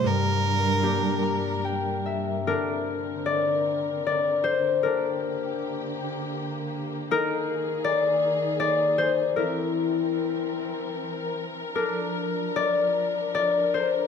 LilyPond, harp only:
\new Staff \with { instrumentName = "Harp" } { \time 3/4 \key bes \lydian \tempo 4 = 77 << { r4. bes''8 g''8 e''8 | bes'4 d''4 d''8 c''8 | bes'2~ bes'8 r8 | bes'4 d''4 d''8 c''8 |
bes'2~ bes'8 r8 | bes'4 d''4 d''8 c''8 | } \\ { g,4 <bes d' g'>2 | d'4. r4. | d'2~ d'8 r8 | ees'4. r4. |
e'2~ e'8 r8 | d'4. r4. | } >> }